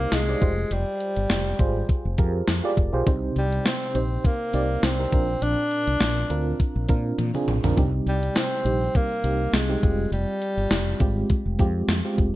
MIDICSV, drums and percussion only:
0, 0, Header, 1, 2, 480
1, 0, Start_track
1, 0, Tempo, 588235
1, 580, Time_signature, 4, 2, 24, 8
1, 10082, End_track
2, 0, Start_track
2, 0, Title_t, "Drums"
2, 97, Note_on_c, 9, 38, 90
2, 99, Note_on_c, 9, 42, 85
2, 179, Note_off_c, 9, 38, 0
2, 181, Note_off_c, 9, 42, 0
2, 339, Note_on_c, 9, 42, 57
2, 340, Note_on_c, 9, 36, 95
2, 421, Note_off_c, 9, 42, 0
2, 422, Note_off_c, 9, 36, 0
2, 579, Note_on_c, 9, 42, 77
2, 661, Note_off_c, 9, 42, 0
2, 819, Note_on_c, 9, 42, 50
2, 900, Note_off_c, 9, 42, 0
2, 950, Note_on_c, 9, 42, 43
2, 1032, Note_off_c, 9, 42, 0
2, 1057, Note_on_c, 9, 42, 81
2, 1059, Note_on_c, 9, 38, 105
2, 1139, Note_off_c, 9, 42, 0
2, 1141, Note_off_c, 9, 38, 0
2, 1298, Note_on_c, 9, 42, 64
2, 1300, Note_on_c, 9, 36, 93
2, 1380, Note_off_c, 9, 42, 0
2, 1382, Note_off_c, 9, 36, 0
2, 1542, Note_on_c, 9, 42, 74
2, 1543, Note_on_c, 9, 36, 83
2, 1624, Note_off_c, 9, 36, 0
2, 1624, Note_off_c, 9, 42, 0
2, 1780, Note_on_c, 9, 42, 78
2, 1783, Note_on_c, 9, 36, 85
2, 1861, Note_off_c, 9, 42, 0
2, 1864, Note_off_c, 9, 36, 0
2, 2020, Note_on_c, 9, 38, 93
2, 2022, Note_on_c, 9, 42, 86
2, 2102, Note_off_c, 9, 38, 0
2, 2104, Note_off_c, 9, 42, 0
2, 2262, Note_on_c, 9, 36, 78
2, 2262, Note_on_c, 9, 42, 60
2, 2343, Note_off_c, 9, 42, 0
2, 2344, Note_off_c, 9, 36, 0
2, 2503, Note_on_c, 9, 36, 113
2, 2504, Note_on_c, 9, 42, 80
2, 2584, Note_off_c, 9, 36, 0
2, 2585, Note_off_c, 9, 42, 0
2, 2742, Note_on_c, 9, 42, 50
2, 2823, Note_off_c, 9, 42, 0
2, 2876, Note_on_c, 9, 42, 41
2, 2958, Note_off_c, 9, 42, 0
2, 2981, Note_on_c, 9, 42, 79
2, 2984, Note_on_c, 9, 38, 102
2, 3063, Note_off_c, 9, 42, 0
2, 3065, Note_off_c, 9, 38, 0
2, 3223, Note_on_c, 9, 42, 66
2, 3305, Note_off_c, 9, 42, 0
2, 3464, Note_on_c, 9, 36, 85
2, 3467, Note_on_c, 9, 42, 78
2, 3546, Note_off_c, 9, 36, 0
2, 3548, Note_off_c, 9, 42, 0
2, 3699, Note_on_c, 9, 42, 74
2, 3781, Note_off_c, 9, 42, 0
2, 3942, Note_on_c, 9, 38, 98
2, 3944, Note_on_c, 9, 42, 85
2, 4023, Note_off_c, 9, 38, 0
2, 4026, Note_off_c, 9, 42, 0
2, 4182, Note_on_c, 9, 36, 98
2, 4183, Note_on_c, 9, 42, 57
2, 4264, Note_off_c, 9, 36, 0
2, 4264, Note_off_c, 9, 42, 0
2, 4423, Note_on_c, 9, 42, 81
2, 4504, Note_off_c, 9, 42, 0
2, 4660, Note_on_c, 9, 42, 47
2, 4742, Note_off_c, 9, 42, 0
2, 4793, Note_on_c, 9, 42, 43
2, 4874, Note_off_c, 9, 42, 0
2, 4898, Note_on_c, 9, 42, 79
2, 4900, Note_on_c, 9, 38, 103
2, 4980, Note_off_c, 9, 42, 0
2, 4982, Note_off_c, 9, 38, 0
2, 5142, Note_on_c, 9, 42, 62
2, 5224, Note_off_c, 9, 42, 0
2, 5384, Note_on_c, 9, 36, 77
2, 5384, Note_on_c, 9, 42, 80
2, 5465, Note_off_c, 9, 36, 0
2, 5465, Note_off_c, 9, 42, 0
2, 5619, Note_on_c, 9, 42, 75
2, 5624, Note_on_c, 9, 36, 87
2, 5700, Note_off_c, 9, 42, 0
2, 5705, Note_off_c, 9, 36, 0
2, 5863, Note_on_c, 9, 48, 49
2, 5865, Note_on_c, 9, 42, 84
2, 5945, Note_off_c, 9, 48, 0
2, 5946, Note_off_c, 9, 42, 0
2, 5995, Note_on_c, 9, 47, 53
2, 6077, Note_off_c, 9, 47, 0
2, 6103, Note_on_c, 9, 42, 61
2, 6103, Note_on_c, 9, 45, 77
2, 6184, Note_off_c, 9, 42, 0
2, 6184, Note_off_c, 9, 45, 0
2, 6232, Note_on_c, 9, 42, 49
2, 6235, Note_on_c, 9, 43, 84
2, 6314, Note_off_c, 9, 42, 0
2, 6316, Note_off_c, 9, 43, 0
2, 6343, Note_on_c, 9, 36, 106
2, 6344, Note_on_c, 9, 42, 81
2, 6425, Note_off_c, 9, 36, 0
2, 6426, Note_off_c, 9, 42, 0
2, 6583, Note_on_c, 9, 42, 50
2, 6664, Note_off_c, 9, 42, 0
2, 6714, Note_on_c, 9, 42, 43
2, 6796, Note_off_c, 9, 42, 0
2, 6819, Note_on_c, 9, 42, 82
2, 6821, Note_on_c, 9, 38, 109
2, 6900, Note_off_c, 9, 42, 0
2, 6903, Note_off_c, 9, 38, 0
2, 7064, Note_on_c, 9, 42, 67
2, 7145, Note_off_c, 9, 42, 0
2, 7304, Note_on_c, 9, 36, 79
2, 7305, Note_on_c, 9, 42, 82
2, 7385, Note_off_c, 9, 36, 0
2, 7386, Note_off_c, 9, 42, 0
2, 7540, Note_on_c, 9, 42, 75
2, 7622, Note_off_c, 9, 42, 0
2, 7781, Note_on_c, 9, 38, 99
2, 7783, Note_on_c, 9, 42, 88
2, 7863, Note_off_c, 9, 38, 0
2, 7865, Note_off_c, 9, 42, 0
2, 8022, Note_on_c, 9, 36, 94
2, 8023, Note_on_c, 9, 42, 58
2, 8104, Note_off_c, 9, 36, 0
2, 8105, Note_off_c, 9, 42, 0
2, 8261, Note_on_c, 9, 42, 77
2, 8342, Note_off_c, 9, 42, 0
2, 8501, Note_on_c, 9, 42, 51
2, 8582, Note_off_c, 9, 42, 0
2, 8632, Note_on_c, 9, 42, 43
2, 8713, Note_off_c, 9, 42, 0
2, 8736, Note_on_c, 9, 42, 78
2, 8738, Note_on_c, 9, 38, 109
2, 8817, Note_off_c, 9, 42, 0
2, 8819, Note_off_c, 9, 38, 0
2, 8977, Note_on_c, 9, 42, 67
2, 8979, Note_on_c, 9, 36, 92
2, 9058, Note_off_c, 9, 42, 0
2, 9061, Note_off_c, 9, 36, 0
2, 9218, Note_on_c, 9, 42, 78
2, 9220, Note_on_c, 9, 36, 81
2, 9299, Note_off_c, 9, 42, 0
2, 9302, Note_off_c, 9, 36, 0
2, 9456, Note_on_c, 9, 42, 74
2, 9461, Note_on_c, 9, 36, 81
2, 9538, Note_off_c, 9, 42, 0
2, 9542, Note_off_c, 9, 36, 0
2, 9699, Note_on_c, 9, 38, 92
2, 9701, Note_on_c, 9, 42, 90
2, 9780, Note_off_c, 9, 38, 0
2, 9783, Note_off_c, 9, 42, 0
2, 9940, Note_on_c, 9, 36, 78
2, 9941, Note_on_c, 9, 42, 60
2, 10022, Note_off_c, 9, 36, 0
2, 10022, Note_off_c, 9, 42, 0
2, 10082, End_track
0, 0, End_of_file